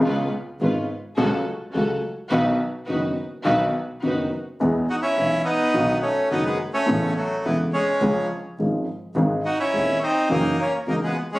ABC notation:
X:1
M:4/4
L:1/16
Q:1/4=105
K:E
V:1 name="String section"
[C^EB]2 z2 [CEB]2 z2 [CFA]2 z2 [CFA]2 z2 | [DFB]2 z2 [DFB]2 z2 [DFB]2 z2 [DFB]2 z2 | z16 | z16 |
z16 |]
V:2 name="Bandoneon"
z16 | z16 | z2 [DF] [CE]3 [B,D]4 [A,C]2 [B,D] [G,B,]2 [A,C]- | [A,C]2 [F,A,]2 [E,B,]2 [G,C]4 z6 |
z2 [DF] [CE]3 [^B,D]2 [^A,D]2 [A,C]2 [A,D] [G,=B,]2 [G,C] |]
V:3 name="Upright piano" clef=bass
[C,,C,G,B,^E]2 z2 [G,,,G,,C,G,B,E]2 z2 [C,,C,F,A,F]2 z2 [C,,C,F,A,F]2 z2 | [B,,,B,,D,F,B,F]2 z2 [F,,,F,,D,F,B,F]2 z2 [B,,,B,,D,F,B,F]2 z2 [F,,,F,,D,F,B,F]2 z2 | [E,,E,G,B,G]2 z2 [B,,,B,,E,G,B,G]2 z2 [B,,,B,,D,F,B,F]2 z2 [F,,,F,,D,F,B,F]2 z2 | [A,,,A,,C,A,B,E]2 z2 [E,,,E,,C,A,B,E]2 z2 [C,,C,^E,G,CG]2 z2 [G,,,G,,E,G,CG]2 z2 |
[G,,,G,,D,G,^B,G]2 z2 [D,,,D,,D,G,B,G]2 z2 [F,,E,F,^A,CF]2 z2 [C,,C,E,A,CF]2 z2 |]
V:4 name="Double bass" clef=bass
C,,2 z2 G,,,2 z2 C,,2 z2 C,,2 z2 | B,,,2 z2 F,,,2 z2 B,,,2 z2 F,,,2 z2 | E,,2 z2 B,,,2 z2 B,,,2 z2 F,,,2 z2 | A,,,2 z2 E,,,2 z2 C,,2 z2 G,,,2 z2 |
G,,,2 z2 D,,2 z2 F,,,2 z2 C,,2 z2 |]